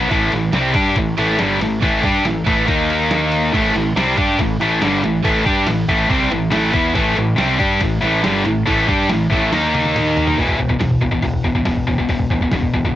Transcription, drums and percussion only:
0.11 kick loud
0.11 ride loud
0.32 ride medium
0.53 snare loud
0.53 ride loud
0.74 kick loud
0.74 ride medium
0.96 kick medium
0.96 ride loud
1.18 ride medium
1.39 snare loud
1.39 ride loud
1.61 ride medium
1.82 kick loud
1.82 ride loud
2.03 kick loud
2.03 ride medium
2.25 snare loud
2.25 ride loud
2.47 kick loud
2.47 ride medium
2.68 kick loud
2.68 ride loud
2.90 ride medium
3.11 snare loud
3.11 ride loud
3.32 ride medium
3.54 kick loud
3.54 crash loud
3.76 ride medium
3.97 snare loud
3.97 ride loud
4.17 kick loud
4.17 ride medium
4.39 kick medium
4.39 ride loud
4.61 ride medium
4.82 snare loud
4.82 ride loud
5.04 ride medium
5.25 kick loud
5.25 ride loud
5.46 kick loud
5.46 ride medium
5.67 snare loud
5.67 ride loud
5.89 kick loud
5.89 ride medium
6.10 kick loud
6.10 ride loud
6.32 ride medium
6.52 snare loud
6.52 ride loud
6.74 kick loud
6.74 ride medium
6.95 kick loud
6.95 ride loud
7.17 ride medium
7.38 snare loud
7.38 ride loud
7.60 kick loud
7.60 ride medium
7.81 kick loud
7.81 ride loud
8.02 ride medium
8.24 snare loud
8.24 ride loud
8.45 ride medium
8.67 kick loud
8.67 ride loud
8.88 kick loud
8.88 ride medium
9.09 snare loud
9.09 ride loud
9.31 kick loud
9.31 ride medium
9.53 snare medium
9.53 ride loud
9.75 high tom medium
9.75 ride medium
9.86 high tom medium
9.96 mid tom medium
9.96 ride loud
10.17 floor tom loud
10.17 ride medium
10.27 floor tom medium
10.38 kick medium
10.38 open hi-hat medium
10.49 kick medium
10.59 kick medium
10.70 kick medium
10.80 kick medium
10.80 snare loud
10.80 open hi-hat medium
10.91 kick medium
11.02 kick medium
11.12 kick medium
11.22 kick medium
11.22 open hi-hat medium
11.34 kick medium
11.44 kick medium
11.55 kick medium
11.66 kick medium
11.66 snare loud
11.66 open hi-hat medium
11.77 kick medium
11.88 kick medium
11.98 kick medium
12.09 kick medium
12.09 open hi-hat medium
12.20 kick medium
12.30 kick medium
12.41 kick medium
12.51 kick medium
12.51 snare medium
12.51 open hi-hat medium
12.62 kick medium
12.73 kick medium
12.85 kick medium

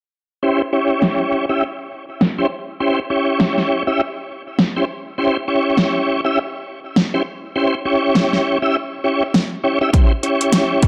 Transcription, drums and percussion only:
1.02 snare loud
2.21 snare loud
3.40 snare loud
3.58 snare soft
4.59 snare loud
5.78 snare loud
6.96 snare loud
8.15 snare loud
8.33 snare soft
9.34 snare loud
9.94 kick loud
9.94 closed hi-hat medium
10.23 closed hi-hat soft
10.41 closed hi-hat soft
10.53 snare loud
10.53 closed hi-hat medium
10.82 kick loud
10.82 closed hi-hat soft

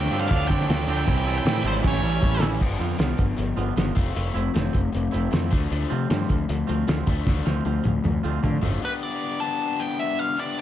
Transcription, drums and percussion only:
0.10 crash medium
0.10 shaker loud
0.29 kick loud
0.29 crash medium
0.29 shaker medium
0.49 kick medium
0.49 crash medium
0.49 shaker loud
0.61 snare soft
0.69 snare loud
0.69 crash medium
0.69 shaker medium
0.88 crash medium
0.88 shaker loud
1.08 kick loud
1.08 crash medium
1.08 shaker medium
1.25 crash medium
1.25 shaker loud
1.45 snare loud
1.45 crash medium
1.45 shaker medium
1.64 crash medium
1.64 shaker loud
1.75 shaker soft
1.84 kick loud
1.84 shaker medium
2.02 shaker medium
2.13 shaker soft
2.22 kick medium
2.22 shaker medium
2.40 snare medium
2.40 shaker medium
2.61 kick loud
2.61 crash medium
2.81 closed hi-hat medium
2.99 snare loud
2.99 closed hi-hat medium
3.18 kick medium
3.18 closed hi-hat medium
3.38 closed hi-hat medium
3.58 closed hi-hat medium
3.77 snare loud
3.77 closed hi-hat medium
3.96 kick medium
3.96 closed hi-hat medium
4.16 closed hi-hat medium
4.37 closed hi-hat medium
4.56 snare loud
4.56 closed hi-hat medium
4.74 kick medium
4.74 closed hi-hat medium
4.95 closed hi-hat medium
5.14 closed hi-hat medium
5.33 snare loud
5.33 closed hi-hat medium
5.53 kick medium
5.53 closed hi-hat medium
5.73 closed hi-hat medium
5.92 closed hi-hat medium
6.10 snare loud
6.10 closed hi-hat medium
6.30 kick medium
6.30 closed hi-hat medium
6.49 closed hi-hat medium
6.69 closed hi-hat medium
6.88 snare medium
6.88 closed hi-hat medium
7.07 kick medium
7.07 closed hi-hat medium
7.27 kick loud
7.27 snare medium
7.47 snare medium
7.85 high tom medium
8.05 mid tom medium
8.44 floor tom medium
8.63 floor tom medium

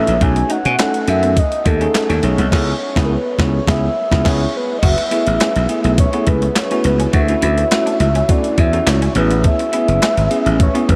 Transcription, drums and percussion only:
0.07 closed hi-hat medium
0.21 kick loud
0.21 closed hi-hat medium
0.36 closed hi-hat soft
0.50 closed hi-hat medium
0.65 closed hi-hat medium
0.79 snare loud
0.79 clap medium
0.79 closed hi-hat medium
0.94 closed hi-hat soft
1.08 closed hi-hat medium
1.23 closed hi-hat soft
1.37 kick loud
1.37 closed hi-hat loud
1.52 closed hi-hat soft
1.66 kick medium
1.66 closed hi-hat medium
1.81 closed hi-hat soft
1.95 snare loud
1.95 clap medium
1.95 closed hi-hat medium
2.10 closed hi-hat soft
2.23 closed hi-hat medium
2.38 closed hi-hat medium
2.52 kick loud
2.52 snare medium
2.52 crash medium
2.96 kick loud
2.96 snare loud
3.39 kick loud
3.39 snare loud
3.67 kick loud
3.67 snare loud
4.12 kick loud
4.12 snare medium
4.25 kick loud
4.25 snare loud
4.25 crash medium
4.83 kick loud
4.83 closed hi-hat medium
4.83 crash medium
4.98 closed hi-hat soft
5.11 closed hi-hat medium
5.27 closed hi-hat medium
5.40 snare loud
5.40 clap medium
5.40 closed hi-hat medium
5.56 closed hi-hat medium
5.69 closed hi-hat medium
5.84 closed hi-hat soft
5.98 kick loud
5.98 closed hi-hat loud
6.13 closed hi-hat medium
6.27 kick loud
6.27 closed hi-hat medium
6.42 closed hi-hat soft
6.56 snare loud
6.56 clap loud
6.56 closed hi-hat medium
6.71 closed hi-hat medium
6.84 closed hi-hat medium
7.00 closed hi-hat medium
7.13 kick loud
7.13 closed hi-hat medium
7.28 closed hi-hat medium
7.42 closed hi-hat medium
7.58 closed hi-hat soft
7.71 snare loud
7.71 clap medium
7.71 closed hi-hat medium
7.87 closed hi-hat medium
8.00 closed hi-hat medium
8.15 closed hi-hat soft
8.29 kick loud
8.29 closed hi-hat loud
8.44 closed hi-hat medium
8.58 kick loud
8.58 closed hi-hat medium
8.73 closed hi-hat soft
8.87 snare loud
8.87 clap medium
8.87 closed hi-hat medium
9.02 closed hi-hat medium
9.15 closed hi-hat medium
9.31 closed hi-hat medium
9.44 kick loud
9.44 closed hi-hat medium
9.59 closed hi-hat medium
9.73 closed hi-hat medium
9.88 closed hi-hat medium
10.02 snare loud
10.02 clap medium
10.02 closed hi-hat medium
10.17 closed hi-hat medium
10.31 closed hi-hat medium
10.46 closed hi-hat soft
10.60 kick loud
10.60 closed hi-hat loud
10.75 closed hi-hat medium
10.89 kick loud
10.89 closed hi-hat medium

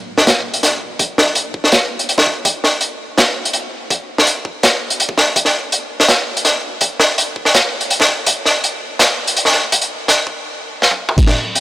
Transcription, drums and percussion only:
0.18 snare medium
0.27 snare loud
0.27 closed hi-hat medium
0.54 closed hi-hat medium
0.63 snare soft
0.63 closed hi-hat medium
0.99 kick loud
0.99 closed hi-hat medium
1.18 snare medium
1.35 closed hi-hat medium
1.54 kick medium
1.64 snare medium
1.72 snare loud
1.72 closed hi-hat medium
1.99 closed hi-hat medium
2.09 closed hi-hat medium
2.18 kick loud
2.18 snare medium
2.27 kick medium
2.45 kick loud
2.45 closed hi-hat medium
2.64 snare medium
2.81 closed hi-hat medium
3.18 snare loud
3.18 snare medium
3.18 closed hi-hat medium
3.45 closed hi-hat medium
3.53 closed hi-hat medium
3.90 kick loud
3.90 closed hi-hat medium
4.18 snare medium
4.27 closed hi-hat medium
4.45 kick medium
4.63 snare loud
4.63 snare soft
4.63 closed hi-hat medium
4.90 closed hi-hat soft
5.00 closed hi-hat medium
5.09 kick loud
5.18 kick medium
5.18 snare medium
5.36 kick loud
5.36 closed hi-hat medium
5.45 snare soft
5.72 closed hi-hat medium
6.00 snare medium
6.08 snare loud
6.08 closed hi-hat medium
6.37 closed hi-hat medium
6.45 snare soft
6.45 closed hi-hat medium
6.81 kick loud
6.81 closed hi-hat medium
7.00 snare medium
7.18 closed hi-hat medium
7.36 kick medium
7.45 snare medium
7.54 snare loud
7.54 closed hi-hat medium
7.81 closed hi-hat soft
7.90 closed hi-hat medium
8.00 kick loud
8.00 snare medium
8.09 kick medium
8.26 kick loud
8.26 closed hi-hat medium
8.45 snare medium
8.64 closed hi-hat medium
8.99 snare loud
8.99 snare medium
8.99 closed hi-hat medium
9.27 closed hi-hat medium
9.37 closed hi-hat medium
9.45 snare medium
9.47 snare soft
9.50 snare soft
9.52 snare soft
9.54 snare soft
9.56 snare soft
9.59 snare soft
9.61 snare soft
9.72 kick loud
9.72 closed hi-hat medium
9.81 closed hi-hat medium
10.08 snare medium
10.08 closed hi-hat medium
10.27 kick medium
10.82 snare medium
10.91 high tom medium
11.09 mid tom medium
11.18 kick loud
11.18 closed hi-hat medium
11.18 crash loud
11.27 snare medium
11.55 closed hi-hat medium

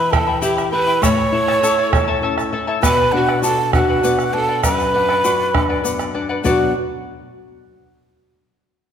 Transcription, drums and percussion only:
0.13 bombo rim medium
0.13 bombo low medium
0.13 shaker soft
0.42 shaker medium
0.58 bombo rim medium
0.58 shaker soft
0.73 bombo rim soft
1.03 bombo rim medium
1.03 bombo low medium
1.03 shaker loud
1.48 bombo rim medium
1.64 shaker medium
1.78 bombo rim soft
1.93 bombo rim medium
1.93 bombo low medium
1.93 shaker soft
2.38 bombo rim medium
2.38 shaker soft
2.53 bombo rim soft
2.83 bombo rim medium
2.83 bombo low medium
2.83 shaker loud
3.29 bombo rim medium
3.43 shaker medium
3.58 bombo rim soft
3.73 bombo rim medium
3.73 bombo low medium
3.73 shaker soft
4.04 shaker medium
4.19 bombo rim medium
4.19 shaker soft
4.34 bombo rim soft
4.63 bombo rim medium
4.63 bombo low medium
4.63 shaker loud
4.79 shaker soft
4.94 bombo rim soft
5.09 bombo rim medium
5.25 bombo rim soft
5.25 shaker loud
5.40 bombo rim soft
5.55 bombo rim medium
5.55 bombo low medium
5.85 bombo rim soft
5.85 shaker medium
5.99 bombo rim medium
5.99 shaker soft
6.15 bombo rim soft
6.45 bombo low medium
6.45 shaker medium

